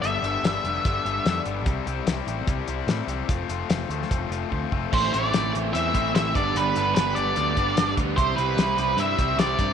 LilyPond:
<<
  \new Staff \with { instrumentName = "Lead electric guitar" } { \time 4/4 \key g \mixolydian \tempo 4 = 147 e''2.~ e''8 r8 | r1 | r1 | c''8 d''4 r8 e''4 e''8 d''8 |
b'4 b'8 d''2 r8 | c''8 b'4. e''4 d''4 | }
  \new Staff \with { instrumentName = "Overdriven electric guitar" } { \time 4/4 \key g \mixolydian <g, d g b d'>8 <g, d g b d'>8 <g, d g b d'>8 <g, d g b d'>8 <g, d g b d'>8 <g, d g b d'>8 <g, d g b d'>8 <g, d g b d'>8 | <c g c' e'>8 <c g c' e'>8 <c g c' e'>8 <c g c' e'>8 <c g c' e'>8 <c g c' e'>8 <c g c' e'>8 <c g c' e'>8 | <f a c' f'>8 <f a c' f'>8 <f a c' f'>8 <f a c' f'>8 <f a c' f'>8 <f a c' f'>8 <f a c' f'>8 <f a c' f'>8 | <a, e a c' e'>8 <a, e a c' e'>8 <a, e a c' e'>8 <a, e a c' e'>8 <a, e a c' e'>8 <a, e a c' e'>8 <a, e a c' e'>8 <g, d g b d'>8 |
<g, d g b d'>8 <g, d g b d'>8 <g, d g b d'>8 <g, d g b d'>8 <g, d g b d'>8 <g, d g b d'>8 <g, d g b d'>8 <g, d g b d'>8 | <c g c' e'>8 <c g c' e'>8 <c g c' e'>8 <c g c' e'>8 <c g c' e'>8 <c g c' e'>8 <c g c' e'>8 <c g c' e'>8 | }
  \new Staff \with { instrumentName = "Overdriven electric guitar" } { \clef bass \time 4/4 \key g \mixolydian r1 | r1 | r1 | <a, e a c' e'>8 <a, e a c' e'>8 <a, e a c' e'>8 <a, e a c' e'>8 <a, e a c' e'>8 <a, e a c' e'>8 <a, e a c' e'>8 <g, d g b d'>8 |
<g, d g b d'>8 <g, d g b d'>8 <g, d g b d'>8 <g, d g b d'>8 <g, d g b d'>8 <g, d g b d'>8 <g, d g b d'>8 <g, d g b d'>8 | <c g c' e'>8 <c g c' e'>8 <c g c' e'>8 <c g c' e'>8 <c g c' e'>8 <c g c' e'>8 <c g c' e'>8 <c g c' e'>8 | }
  \new Staff \with { instrumentName = "Picked electric bass" } { \clef bass \time 4/4 \key g \mixolydian g,,8 g,,8 g,,8 f,,8 g,,8 g,,8 f,8 g,,8 | c,8 c,8 c,8 a,,8 c,8 c,8 a,8 c,8 | f,,8 f,,8 f,,8 d,8 f,,8 f,,8 d,8 f,,8 | a,,8 a,,8 a,,8 a,,8 e,8 a,,8 a,,8 g,,8 |
g,,8 g,,8 g,,8 g,,8 d,8 g,,8 g,,8 d,8 | c,8 c,8 c,8 c,8 g,8 c,8 c,8 g,8 | }
  \new DrumStaff \with { instrumentName = "Drums" } \drummode { \time 4/4 hh8 hh8 <hh sn>8 hh8 <hh bd>8 hh8 <hh sn>8 hh8 | <hh bd>8 hh8 <hh sn>8 hh8 <hh bd>8 hh8 <hh sn>8 hh8 | <hh bd>8 hh8 <hh sn>8 hh16 sn16 <hh bd>8 hh8 bd8 bd8 | <cymc bd>8 hh8 <hh sn>8 hh8 hh8 <hh bd>8 <hh sn>8 <hh bd>8 |
hh8 hh8 <hh sn>8 hh8 hh8 <hh bd>8 <hh sn>8 <hh bd>8 | <hh bd>8 hh8 <hh sn>8 hh8 hh8 <hh bd>8 <hh sn>8 <hh bd>8 | }
>>